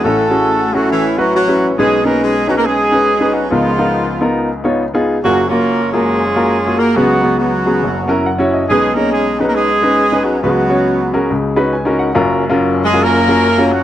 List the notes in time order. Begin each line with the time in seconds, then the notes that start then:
0.04 A1 A2 A3 C#4 E4 F#4 A4
0.30 C#4 E4 F#4 G#4
0.74 F#3 C#4 E4 F#4 A4
0.90 E3 C#4 E4
1.18 F#3 C#4 E4 F#4 B4
1.34 F#3 C#4 F#4
1.48 C#4 E4 F#4 B4
1.78 B1 B2 G#3 C#4 D#4 G#4 B4
2.05 A#3 C#4 D#4 G#4 A#4 B4
2.23 G#3 G#4
2.47 F#3 C#4 D#4 F#4 G#4 B4
2.57 A#3 A#4
2.65 G#3 C#4 D#4 G#4
2.92 C#4 D#4 G#4 B4
3.20 C#4 D#4 G#4 B4
3.34 F#3 F#4
3.51 C#2 C#3 F3 G#3 B3 D#4 F4 A#4
3.78 B3 D#4 F4 A#4
4.21 B3 D#4 F4 A#4
4.64 B3 D#4 F4 C#5
4.94 B3 D#4 F4 G#4
5.24 F#1 F#2 F#3 A#3 C#4 F4 F#4 G#4
5.48 A#3 C#4 F4 F#4 A#4
5.92 G#3 A#3 C#4 F4 F#4 G#4 A#4
6.35 A#3 F4 F#4 A#4
6.67 A#3 F4 F#4 G#4
6.79 A#3 A#4
6.96 C#2 C#3 F#3 B3 C#4 F#4 G#4
7.22 B3 C#4 F#4 G#4
7.38 F#3 B3 F#4
7.66 B3 C#4 F#4 G#4
7.83 F#1 F#2
8.08 C#4 E4 F#4 A#4 A#5
8.26 F#5
8.38 C#4 E4 F#4 C#5
8.53 D#5
8.69 B1 B2 G#3 C#4 D#4 G#4 B4
8.95 A#3 C#4 D#4 G#4 A#4 C#5
9.13 G#3 G#4
9.39 F#3 C#4 D#4 F#4 G#4 B4
9.47 A#3 A#4
9.55 G#3 C#4 D#4 G#4
9.82 C#4 D#4 G#4 B4
10.12 C#4 D#4 G#4 B4
10.24 F#3 F#4
10.42 C#2 C#3 F#3 B3 C#4 F#4 G#4 B4
10.69 C#4 F#4 G#4 C#5
11.14 C#4 F#4 G#4 A#4
11.30 C#2 C#3
11.56 C#4 D#4 F#4 B4 B5
11.73 G#5
11.85 C#4 D#4 F#4 A#4
11.99 F#5
12.15 F#1 F#2 C#4 F4 F#4 A#4
12.49 C#4 F4 F#4 A#4
12.85 G#3 G#4
12.93 C#4 F4 F#4 A#4
13.03 A#3 C#4 F4 A#4
13.28 C#4 F4 F#4 A#4
13.58 C#4 F4 F#4 C#5
13.73 F#3 F#4